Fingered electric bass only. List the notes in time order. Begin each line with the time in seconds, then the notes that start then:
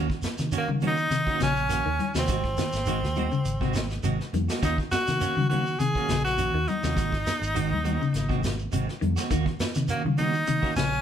0.24 muted fingered electric bass stroke
0.39 D#3
0.68 D#3
1.11 D#3
1.41 A#1
1.86 D#2
2.15 D#2
2.28 G#1
2.73 G#1
3.02 D#2
3.45 G#1
4.04 G#1
4.33 F2
4.63 D#2
4.93 muted fingered electric bass stroke
5.08 D#3
5.37 D#3
5.80 D#3
6.09 A#1
6.53 D#2
6.83 D#2
6.97 G#1
7.42 G#1
7.71 D#2
8.14 G#1
8.73 G#1
9.02 F2
9.31 D#2
9.61 muted fingered electric bass stroke
9.76 D#3
10.05 D#3
10.49 D#3
10.78 A#1